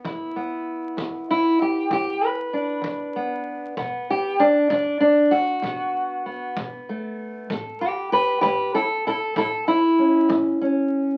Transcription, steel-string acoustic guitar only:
Already playing: B3
0.04 E2 E4
0.36 B3
0.97 E2
1.31 E4
1.62 G4
1.90 E2 G4
2.26 B4
2.53 D4
2.81 E2
3.16 B3
3.77 B2 B3
4.10 G4
4.40 D4
4.70 B2 D4
5.00 D4
5.31 F#4
5.62 B2 B3
6.26 B3
6.57 B2
6.89 A3
7.50 A2 A4
7.81 G4 B4
8.12 G4 B4
8.41 A2 G4 B4
8.75 E4 A4
9.07 E4 A4
9.37 A2 E4 A4
9.68 E4
9.99 C#4
10.29 A2
10.61 C#4

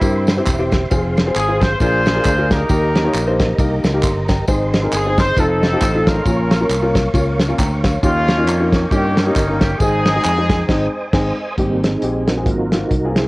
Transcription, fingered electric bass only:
0.02 G2
0.47 E1
0.91 F1
1.36 G#1
1.81 A#1
2.26 D2
2.69 D#2
3.14 A#1
3.58 C2
3.84 C#2
4.03 G1
4.48 G#1
4.93 G1
5.37 F1
5.82 A1
6.26 A#1
6.69 C2
7.14 C#2
7.59 D2
8.03 D#2
8.47 F2
8.91 G2
9.36 G1
9.80 G#1
10.25 F2
10.69 G#1
11.13 G#1
11.58 G#1
12.02 A#1
12.46 G#1
12.91 C2

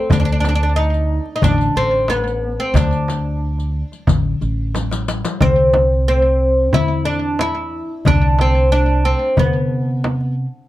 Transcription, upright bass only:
0.11 D2
1.42 A1
1.76 A1
2.74 D2
4.08 A1
4.41 A1
5.41 C2
6.73 E2
8.06 C2
9.38 C3

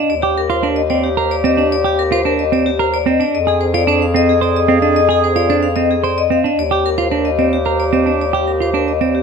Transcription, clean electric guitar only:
Already playing: D4
0.23 G4
0.50 F4
0.63 D4
0.90 C4
1.17 A#4
1.44 C4
1.57 D4
1.84 G4
2.12 F4
2.25 D4
2.52 C4
2.79 A#4
3.06 C4
3.20 D4
3.47 G#4
3.74 F4
3.87 D4
4.14 C4
4.41 C5
4.68 C4
4.82 D4
5.09 G#4
5.36 F4
5.50 D4
5.76 C4
6.04 C5
6.30 C4
6.44 D4
6.71 G4
6.98 F4
7.11 D4
7.39 C4
7.66 A#4
7.93 C4
8.06 D4
8.33 G4
8.60 F4
8.74 D4
9.01 C4

